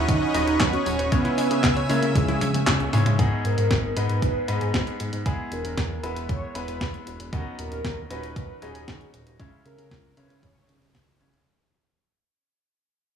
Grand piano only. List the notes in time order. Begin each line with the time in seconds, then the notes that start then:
Already playing: F#3 C#4 D#4 B4
0.34 F#3 C#4 D#4 B4
1.12 C#3 G#3 C#4 E4 C#5
1.89 C#3 G#3 C#4 E4 C#5
2.93 G#2 G#3 C#4 E4 C#5
3.19 G#2 G#3 B3 D#4 G#4
3.96 G#2 G#3 B3 D#4 B4
4.48 G#2 G#3 B3 D#4 B4
5.26 G#3 B3 E4 G#4
6.03 G#3 B3 E4 B4
6.55 G#3 B3 E4 B4
7.33 F#3 B3 C#4 D#4
8.10 F#3 C#4 D#4 B4
8.62 F#3 C#4 D#4 B4
9.40 C#3 G#3 C#4 E4 C#5
10.17 C#3 G#3 C#4 E4 C#5
11.20 C#3 G#3 C#4 E4 C#5